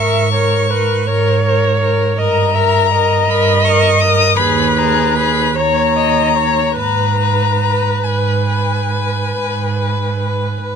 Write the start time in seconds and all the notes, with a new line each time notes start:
Already playing: G#2 A#4 E5 C#6
0.32 A#4 C#5
0.70 A#4 B4
1.07 G#2 A#4 C#5
1.44 A#4
1.80 A#4
2.17 G2 A#4 D#5 A#5
2.54 A#4 E5
2.91 A#4 D#5
3.28 G2 A#4 B5
3.64 A#4 C#6
4.00 A#4 D#6
4.37 D#2 G#4 B4 B5
4.77 G#4 A#5
5.15 G#4 B5
5.55 D#2 C#5 A#5
5.96 C#5 D#5
6.35 C#5
6.76 G#2 B4 A#5
7.20 B4
7.63 B4
8.04 G#2 B4 G#5
8.49 B4
8.91 B4
9.33 G#2 B4
9.78 B4
10.19 B4
10.60 G#2 B4